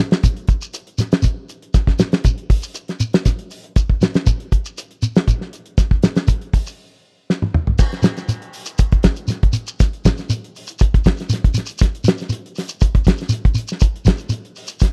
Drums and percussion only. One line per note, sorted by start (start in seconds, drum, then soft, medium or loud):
0.11 snare medium
0.11 closed hi-hat soft
0.11 shekere soft
0.23 kick medium
0.23 closed hi-hat medium
0.23 shekere medium
0.37 closed hi-hat soft
0.47 kick medium
0.47 closed hi-hat soft
0.47 shekere soft
0.62 shekere medium
0.74 closed hi-hat medium
0.74 shekere medium
0.87 closed hi-hat soft
0.98 snare soft
0.98 closed hi-hat soft
0.98 shekere medium
1.12 snare medium
1.12 closed hi-hat soft
1.12 shekere soft
1.22 kick medium
1.22 closed hi-hat medium
1.22 shekere medium
1.49 closed hi-hat soft
1.49 shekere soft
1.62 closed hi-hat soft
1.74 kick medium
1.74 snare soft
1.74 closed hi-hat medium
1.74 shekere medium
1.87 kick medium
1.87 snare soft
1.99 snare medium
1.99 closed hi-hat soft
1.99 shekere medium
2.12 snare medium
2.12 closed hi-hat soft
2.12 shekere soft
2.24 kick medium
2.24 closed hi-hat medium
2.24 shekere medium
2.38 closed hi-hat soft
2.50 kick medium
2.50 open hi-hat medium
2.50 shekere soft
2.63 shekere medium
2.74 closed hi-hat medium
2.74 shekere medium
2.88 snare soft
2.88 closed hi-hat soft
3.00 closed hi-hat soft
3.00 shekere medium
3.13 snare medium
3.13 closed hi-hat soft
3.13 shekere soft
3.25 kick medium
3.25 snare soft
3.25 closed hi-hat medium
3.25 shekere medium
3.39 closed hi-hat soft
3.51 open hi-hat medium
3.51 shekere soft
3.64 closed hi-hat soft
3.76 kick medium
3.76 closed hi-hat medium
3.76 shekere medium
3.90 kick medium
4.01 snare medium
4.01 closed hi-hat medium
4.01 shekere medium
4.14 snare medium
4.14 closed hi-hat soft
4.14 shekere soft
4.26 kick medium
4.26 closed hi-hat medium
4.26 shekere medium
4.40 closed hi-hat soft
4.52 kick medium
4.52 closed hi-hat soft
4.52 shekere soft
4.65 shekere medium
4.78 closed hi-hat medium
4.78 shekere medium
4.91 closed hi-hat soft
5.02 closed hi-hat soft
5.02 shekere medium
5.16 snare medium
5.16 closed hi-hat soft
5.16 shekere soft
5.28 kick medium
5.28 closed hi-hat medium
5.28 shekere medium
5.41 snare soft
5.53 closed hi-hat soft
5.53 shekere soft
5.66 closed hi-hat soft
5.78 kick medium
5.78 snare soft
5.78 closed hi-hat medium
5.78 shekere medium
5.91 kick medium
6.03 snare medium
6.03 closed hi-hat soft
6.03 shekere medium
6.16 snare medium
6.16 closed hi-hat soft
6.16 shekere soft
6.27 kick medium
6.27 closed hi-hat medium
6.27 shekere medium
6.41 closed hi-hat soft
6.54 kick medium
6.54 open hi-hat medium
6.54 shekere soft
6.67 shekere medium
7.30 snare soft
7.42 mid tom soft
7.54 mid tom medium
7.67 floor tom medium
7.78 kick medium
7.78 snare soft
7.78 crash medium
7.78 shekere medium
7.92 snare soft
7.92 closed hi-hat soft
8.02 snare medium
8.02 closed hi-hat medium
8.02 shekere medium
8.17 snare soft
8.17 closed hi-hat soft
8.17 shekere soft
8.28 closed hi-hat medium
8.28 shekere medium
8.42 closed hi-hat soft
8.53 open hi-hat medium
8.53 shekere soft
8.66 closed hi-hat soft
8.66 shekere medium
8.78 kick medium
8.78 closed hi-hat medium
8.78 shekere medium
8.92 kick medium
8.92 closed hi-hat soft
9.03 kick medium
9.03 snare medium
9.03 closed hi-hat medium
9.03 shekere soft
9.16 closed hi-hat soft
9.16 shekere soft
9.28 snare soft
9.28 closed hi-hat medium
9.28 shekere medium
9.43 kick medium
9.43 closed hi-hat soft
9.53 closed hi-hat medium
9.53 shekere medium
9.67 shekere medium
9.80 kick loud
9.80 snare soft
9.80 closed hi-hat medium
9.80 shekere medium
9.93 closed hi-hat soft
10.05 kick medium
10.05 snare medium
10.05 closed hi-hat medium
10.05 shekere medium
10.17 snare soft
10.17 closed hi-hat soft
10.17 shekere soft
10.30 closed hi-hat medium
10.30 shekere medium
10.44 closed hi-hat soft
10.56 open hi-hat medium
10.56 shekere soft
10.67 closed hi-hat soft
10.67 shekere medium
10.79 kick medium
10.79 closed hi-hat medium
10.79 shekere medium
10.94 kick medium
10.94 closed hi-hat soft
11.04 kick medium
11.04 snare medium
11.04 closed hi-hat medium
11.04 shekere soft
11.17 snare soft
11.17 closed hi-hat soft
11.17 shekere soft
11.30 snare soft
11.30 closed hi-hat medium
11.30 shekere medium
11.44 kick medium
11.44 closed hi-hat soft
11.54 snare soft
11.54 closed hi-hat medium
11.54 shekere medium
11.66 closed hi-hat soft
11.66 shekere medium
11.78 kick medium
11.78 closed hi-hat medium
11.78 shekere medium
11.83 snare soft
11.95 closed hi-hat soft
12.04 snare medium
12.04 closed hi-hat medium
12.04 shekere medium
12.18 snare soft
12.18 closed hi-hat soft
12.18 shekere soft
12.29 closed hi-hat medium
12.29 shekere medium
12.46 closed hi-hat soft
12.55 snare soft
12.55 open hi-hat medium
12.55 shekere soft
12.69 closed hi-hat soft
12.69 shekere medium
12.81 kick medium
12.81 closed hi-hat medium
12.81 shekere medium
12.95 kick medium
12.95 closed hi-hat soft
13.04 kick medium
13.04 snare medium
13.04 closed hi-hat medium
13.04 shekere soft
13.17 closed hi-hat soft
13.17 shekere soft
13.22 snare soft
13.29 closed hi-hat medium
13.29 shekere medium
13.45 kick medium
13.45 closed hi-hat soft
13.55 closed hi-hat medium
13.55 shekere loud
13.68 snare soft
13.68 shekere medium
13.80 kick medium
13.80 closed hi-hat medium
13.80 shekere medium
13.96 closed hi-hat soft
14.05 kick medium
14.05 snare medium
14.05 closed hi-hat medium
14.05 shekere medium
14.18 closed hi-hat soft
14.18 shekere soft
14.29 closed hi-hat medium
14.29 shekere medium
14.45 closed hi-hat soft
14.56 open hi-hat medium
14.56 shekere soft
14.67 closed hi-hat soft
14.67 shekere medium
14.80 kick medium
14.80 snare soft
14.80 closed hi-hat medium
14.80 shekere medium